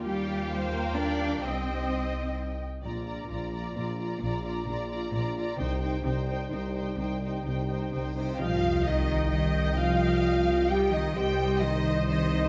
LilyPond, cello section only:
\new Staff \with { instrumentName = "Cello section" } { \clef bass \time 3/4 \key c \minor \tempo 4 = 130 g4. bes8 d'4 | c'2 r4 | bes,4 bes,4 bes,4 | bes,4 bes,4 bes,4 |
c4 c4 c4 | c4 c4 c8 c8 | f4 ees4 ees4 | f2 g8 ees8 |
g4 ees4 ees4 | }